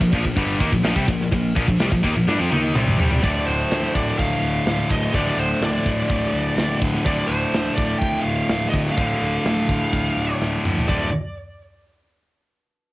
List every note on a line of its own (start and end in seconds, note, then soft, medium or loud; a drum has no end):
0.00 0.12 A#1 medium
0.00 0.10 A#2 medium
0.00 0.11 F3 medium
0.00 kick loud
0.12 0.24 A#1 loud
0.12 0.23 A#2 loud
0.12 0.24 F3 medium
0.12 kick medium
0.12 ride medium
0.25 0.36 A#1 medium
0.25 0.36 A#2 medium
0.25 0.37 F3 medium
0.25 kick medium
0.36 0.59 G1 loud
0.36 0.60 G2 loud
0.36 0.60 D3 loud
0.36 0.60 G3 loud
0.36 kick loud
0.36 ride loud
0.60 0.71 D#2 loud
0.60 0.72 D#3 medium
0.60 0.72 A#3 loud
0.60 kick loud
0.60 ride medium
0.72 0.83 A#1 medium
0.72 0.83 A#2 medium
0.72 0.84 F3 medium
0.72 kick medium
0.84 0.95 A#1 loud
0.84 0.96 A#2 medium
0.84 0.96 F3 loud
0.84 snare loud
0.84 ride loud
0.96 1.07 C2 loud
0.96 1.08 C3 medium
0.96 1.08 G3 loud
0.96 kick loud
1.08 1.30 A#1 medium
1.08 1.27 A#2 medium
1.08 1.28 F3 medium
1.08 kick loud
1.08 ride medium
1.21 snare soft
1.32 1.54 A#1 medium
1.32 1.51 A#2 medium
1.32 1.52 F3 medium
1.32 kick medium
1.32 ride loud
1.56 1.67 A#1 medium
1.56 1.67 A#2 loud
1.56 1.68 F3 loud
1.56 kick loud
1.56 ride medium
1.68 1.78 A#1 medium
1.68 1.79 A#2 medium
1.68 1.80 F3 medium
1.68 kick medium
1.79 1.90 C2 medium
1.79 1.91 C3 medium
1.79 1.91 G3 loud
1.79 snare loud
1.79 ride loud
1.91 2.03 A#1 medium
1.91 2.03 A#2 medium
1.91 2.03 F3 medium
1.91 kick loud
2.03 2.15 D#2 loud
2.03 2.15 D#3 medium
2.03 2.15 A#3 loud
2.03 kick medium
2.03 ride medium
2.16 2.26 A#1 medium
2.16 2.28 A#2 medium
2.16 2.28 F3 medium
2.27 2.38 G2 loud
2.27 2.39 G3 loud
2.27 2.39 D4 loud
2.27 snare medium
2.40 2.51 F2 loud
2.40 2.51 F3 medium
2.40 2.52 C4 loud
2.52 2.74 D#2 loud
2.52 2.75 D#3 loud
2.52 2.76 A#3 loud
2.52 2.76 D#4 loud
2.52 high tom medium
2.75 2.98 C2 loud
2.75 2.98 C3 medium
2.75 2.99 G3 medium
2.75 2.99 C4 loud
2.75 mid tom medium
2.88 mid tom loud
3.00 3.11 C2 loud
3.00 3.11 C3 medium
3.00 3.11 G3 loud
3.00 floor tom loud
3.12 3.23 C2 loud
3.12 3.22 C3 medium
3.12 3.23 G3 loud
3.12 floor tom medium
3.23 3.39 D1 loud
3.23 4.92 D2 medium
3.23 4.90 A2 loud
3.23 4.89 D3 loud
3.23 3.48 D5 medium
3.23 kick loud
3.23 open hi-hat medium
3.46 3.63 D1 medium
3.46 3.91 C5 medium
3.46 open hi-hat medium
3.71 3.87 D2 medium
3.71 snare loud
3.71 open hi-hat medium
3.94 4.11 D1 medium
3.94 4.18 D5 loud
3.94 kick medium
3.94 open hi-hat medium
4.19 4.35 D1 loud
4.19 4.91 F5 loud
4.19 kick loud
4.19 open hi-hat medium
4.43 4.58 D1 loud
4.43 open hi-hat medium
4.66 4.82 D1 medium
4.66 snare loud
4.66 open hi-hat medium
4.89 5.06 D1 medium
4.89 5.13 D2 medium
4.89 5.13 A2 medium
4.89 5.16 D3 medium
4.89 5.15 D#5 loud
4.89 kick medium
4.89 snare soft
4.89 open hi-hat medium
5.14 5.30 D1 medium
5.14 6.84 D2 medium
5.14 6.80 A2 loud
5.14 6.80 D3 medium
5.14 5.39 D5 loud
5.14 kick loud
5.14 open hi-hat medium
5.38 5.53 D1 medium
5.38 5.63 C5 medium
5.38 open hi-hat medium
5.62 5.77 D2 medium
5.62 6.78 D5 medium
5.62 snare loud
5.62 open hi-hat medium
5.86 6.02 D1 medium
5.86 kick medium
5.86 open hi-hat medium
6.10 6.26 D1 loud
6.10 kick loud
6.10 open hi-hat medium
6.34 6.49 D1 medium
6.34 open hi-hat medium
6.57 6.73 D1 loud
6.57 snare loud
6.57 open hi-hat medium
6.80 6.97 D1 medium
6.80 7.04 D2 medium
6.80 7.04 A2 medium
6.80 7.07 D3 medium
6.80 kick medium
6.80 open hi-hat medium
6.94 snare soft
7.04 7.21 D1 loud
7.04 8.75 D2 loud
7.04 8.72 A2 medium
7.04 8.72 D3 medium
7.04 7.30 D5 medium
7.04 kick loud
7.04 open hi-hat medium
7.27 7.45 D1 medium
7.27 7.72 C5 medium
7.27 open hi-hat medium
7.53 7.69 D2 medium
7.53 snare loud
7.53 open hi-hat medium
7.74 7.93 D1 medium
7.74 7.98 D5 medium
7.74 kick medium
7.74 open hi-hat medium
7.98 8.17 D1 medium
7.98 8.24 G5 loud
7.98 kick loud
7.98 open hi-hat medium
8.21 8.69 F5 medium
8.25 8.41 D1 medium
8.25 open hi-hat medium
8.49 8.65 D1 loud
8.49 snare loud
8.49 open hi-hat medium
8.69 9.00 D3 medium
8.69 8.76 D#5 medium
8.73 8.89 D1 medium
8.73 8.96 D2 medium
8.73 8.96 A2 medium
8.73 kick medium
8.73 open hi-hat medium
8.86 snare soft
8.92 10.34 F5 medium
8.97 9.13 D1 medium
8.97 10.63 D2 medium
8.97 10.64 A2 medium
8.97 10.62 D3 medium
8.97 kick loud
8.97 open hi-hat medium
9.21 9.37 D1 medium
9.21 open hi-hat medium
9.45 9.61 D2 medium
9.45 snare loud
9.45 open hi-hat medium
9.69 9.84 D1 medium
9.69 kick medium
9.69 open hi-hat medium
9.93 10.09 D1 medium
9.93 kick loud
9.93 open hi-hat medium
10.17 10.32 D1 medium
10.17 open hi-hat medium
10.41 10.57 D1 loud
10.41 snare medium
10.63 10.80 D1 medium
10.63 10.87 D2 medium
10.63 10.87 A2 medium
10.63 10.86 D3 medium
10.63 mid tom medium
10.78 floor tom medium
10.88 11.11 D1 medium
10.88 11.07 D2 medium
10.88 11.07 A2 medium
10.88 11.08 D3 loud
10.88 11.10 D5 medium
10.88 kick loud
10.88 crash medium